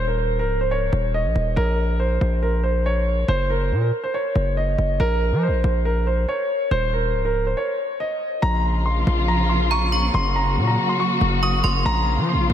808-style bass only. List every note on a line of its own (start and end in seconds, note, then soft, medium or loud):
0.00 0.41 D#1 loud
0.39 0.90 C#1 loud
0.93 1.26 D#1 loud
1.25 1.35 A#1 loud
1.36 1.56 D#1 loud
1.57 2.19 A#1 loud
2.21 3.24 A#1 loud
3.28 3.73 F#1 loud
3.71 3.92 A#2 loud
4.35 4.77 F#1 loud
4.78 4.99 F#1 loud
5.00 5.33 A#1 loud
5.32 5.49 F3 loud
5.48 5.63 A#1 loud
5.64 6.26 A#1 loud
6.71 7.16 D#1 loud
7.14 7.55 C#1 medium
8.43 9.04 A#1 loud
9.07 10.10 A#1 loud
10.14 10.58 F#1 loud
10.57 10.77 A#2 loud
11.21 11.62 F#1 loud
11.64 11.85 F#1 loud
11.85 12.19 A#1 loud
12.18 12.35 F3 loud
12.34 12.49 A#1 medium
12.50 12.53 A#1 loud